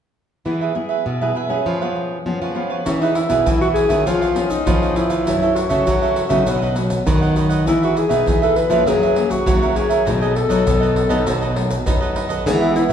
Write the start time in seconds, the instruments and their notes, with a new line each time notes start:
0.45 nylon-string guitar E3 B3 E4 G#4, cavaquinho E4 G#4 B4 E5
0.61 cavaquinho G#4 B4 E5
0.75 nylon-string guitar B3 E4 G#4, muted cavaquinho stroke
0.89 cavaquinho G#4 B4 E5
1.06 nylon-string guitar B2, cavaquinho E4 G#4 B4 E5
1.21 nylon-string guitar B3 E4 G#4, cavaquinho G#4 B4 E5
1.35 cavaquinho E4 G#4 B4 E5
1.49 nylon-string guitar B3 C#4 G#4, cavaquinho G#4 B4 E5
1.66 nylon-string guitar F3, cavaquinho F4 B4 C#5 F5
1.81 nylon-string guitar B3 C#4 G#4, cavaquinho B4 C#5 F5
1.96 muted cavaquinho stroke
2.26 nylon-string guitar F3 B3 C#4 G#4
2.42 nylon-string guitar F3, cavaquinho B4 C#5 F5
2.55 nylon-string guitar B3 C#4 G#4, cavaquinho F4 B4 C#5 F5
2.70 cavaquinho B4 C#5 F5
2.86 nylon-string guitar E3 B3 E4 G#4, alto saxophone C#4, cavaquinho E4 G#4 B4 E5, pandeiro, shaker, surdo
3.01 alto saxophone D#4, cavaquinho G#4 B4 E5, pandeiro, shaker
3.15 alto saxophone E4, muted cavaquinho stroke, pandeiro, shaker
3.29 nylon-string guitar B2 B3 E4 G#4, cavaquinho G#4 B4 E5, pandeiro, shaker, surdo
3.46 nylon-string guitar B2 E3, cavaquinho E4 G#4 B4 E5, pandeiro, shaker, surdo
3.61 alto saxophone F#4, cavaquinho G#4 B4 E5, pandeiro, shaker
3.74 alto saxophone G#4, pandeiro
3.89 nylon-string guitar D#3 B3 C#4 G#4, cavaquinho G#4 B4 E5, pandeiro, shaker, surdo
4.06 nylon-string guitar F3, cavaquinho F4 B4 C#5 F5, alto saxophone F4, pandeiro, shaker, surdo
4.21 cavaquinho B4 C#5 F5, pandeiro, shaker, surdo
4.35 nylon-string guitar B3 C#4 G#4, muted cavaquinho stroke, pandeiro
4.45 alto saxophone F4
4.50 alto saxophone D#4, pandeiro, shaker, surdo
4.66 nylon-string guitar F3 B3 C#4 G#4, cavaquinho F4 B4 C#5 F5, pandeiro, shaker, surdo
4.82 cavaquinho B4 C#5 F5, pandeiro, shaker
4.96 alto saxophone E4, cavaquinho F4 B4 C#5 F5, pandeiro, surdo
5.10 cavaquinho B4 C#5 F5, pandeiro, shaker
5.26 nylon-string guitar F#2 E3 F#3 A3 C#4, cavaquinho F#4 A4 C#5 E5, pandeiro, shaker, surdo
5.42 alto saxophone E4, cavaquinho A4 C#5 E5, pandeiro, shaker
5.55 alto saxophone F#4, muted cavaquinho stroke, pandeiro, shaker
5.69 nylon-string guitar C#3 E3 A3 C#4, cavaquinho A4 C#5 E5, pandeiro, shaker, surdo
5.86 nylon-string guitar C#3 F#3, cavaquinho F#4 A4 C#5 E5, pandeiro, shaker, surdo
6.02 cavaquinho A4 C#5 E5, pandeiro, shaker
6.16 pandeiro
6.29 nylon-string guitar C#3 F#3 B3 D#4, cavaquinho A4 C#5 E5, pandeiro, shaker, surdo
6.46 nylon-string guitar B2, cavaquinho F#4 B4 D#5 F#5, pandeiro, shaker, surdo
6.62 cavaquinho B4 D#5 F#5, pandeiro, shaker, surdo
6.76 nylon-string guitar F#3 B3 D#4, muted cavaquinho stroke, pandeiro, shaker
6.90 pandeiro, shaker, surdo
7.06 nylon-string guitar F#2 D#3 F#3 B3 D#4, cavaquinho F#4 B4 D#5 F#5, pandeiro, shaker, surdo
7.21 cavaquinho B4 D#5 F#5, pandeiro, shaker
7.35 cavaquinho F#4 B4 D#5 F#5, pandeiro, shaker
7.49 cavaquinho B4 D#5 F#5, pandeiro, shaker
7.66 nylon-string guitar E3 B3 D#4 G#4, cavaquinho D#4 G#4 B4 E5, alto saxophone E4, pandeiro, shaker, surdo
7.82 alto saxophone F#4, cavaquinho G#4 B4 E5, pandeiro, shaker
7.96 alto saxophone G#4, muted cavaquinho stroke, pandeiro, shaker
8.09 nylon-string guitar B2 B3 D#4 G#4, cavaquinho G#4 B4 E5, pandeiro, shaker, surdo
8.26 nylon-string guitar B2 E3, cavaquinho D#4 G#4 B4 E5, pandeiro, shaker, surdo
8.42 cavaquinho G#4 B4 E5, alto saxophone A4, pandeiro, shaker
8.56 alto saxophone B4, pandeiro
8.70 nylon-string guitar E3 F3 A#3 C#4, cavaquinho G#4 B4 E5, pandeiro, shaker, surdo
8.87 nylon-string guitar F#2 F#3, cavaquinho F#4 A#4 C#5 E5, alto saxophone G#4, pandeiro, shaker, surdo
9.02 cavaquinho A#4 C#5 E5, pandeiro, shaker, surdo
9.16 nylon-string guitar E3 A#3 C#4, muted cavaquinho stroke, pandeiro
9.30 alto saxophone F#4, pandeiro, shaker, surdo
9.46 nylon-string guitar C#3 E3 F#3 A#3 C#4, cavaquinho F#4 A#4 C#5 E5, pandeiro, shaker, surdo
9.62 cavaquinho A#4 C#5 E5, pandeiro, shaker
9.75 cavaquinho F#4 A#4 C#5 E5, alto saxophone G#4, pandeiro, surdo
9.89 cavaquinho A#4 C#5 E5, pandeiro, shaker
10.05 nylon-string guitar B2 F#3 A3 D#4, cavaquinho D#4 A4 B4 D#5, pandeiro, shaker, surdo
10.21 alto saxophone G#4, cavaquinho A4 B4 D#5, pandeiro, shaker
10.35 alto saxophone A4, muted cavaquinho stroke, pandeiro
10.49 nylon-string guitar F#3 A3 D#4, cavaquinho A4 B4 D#5, pandeiro, shaker, surdo
10.65 nylon-string guitar F#2 B2, cavaquinho D#4 A4 B4 D#5, pandeiro, shaker, surdo
10.80 cavaquinho A4 B4 D#5, pandeiro, shaker
10.96 pandeiro
11.09 nylon-string guitar F#3 A3 B3 D#4, cavaquinho A4 B4 D#5, pandeiro, shaker, surdo
11.26 nylon-string guitar B2, cavaquinho D#4 A4 B4 D#5, pandeiro, shaker, surdo
11.41 cavaquinho A4 B4 D#5, pandeiro, shaker, surdo
11.55 nylon-string guitar F#3 A3 D#4, muted cavaquinho stroke, pandeiro
11.70 pandeiro, shaker, surdo
11.86 nylon-string guitar F#2 F#3 A3 B3 D#4, cavaquinho D#4 A4 B4 D#5, pandeiro, shaker, surdo
12.01 cavaquinho A4 B4 D#5, pandeiro, shaker
12.15 cavaquinho D#4 A4 B4 D#5, pandeiro, surdo
12.29 cavaquinho A4 B4 D#5, pandeiro, shaker
12.45 nylon-string guitar E3 G#3 B3 D#4, trombone B3, cavaquinho D#4 G#4 B4 E5, alto saxophone G#4, pandeiro, shaker, surdo
12.61 alto saxophone E4, cavaquinho G#4 B4 E5, pandeiro, shaker
12.75 alto saxophone E4, muted cavaquinho stroke, pandeiro, shaker
12.89 nylon-string guitar B2 G#3, cavaquinho B4 E5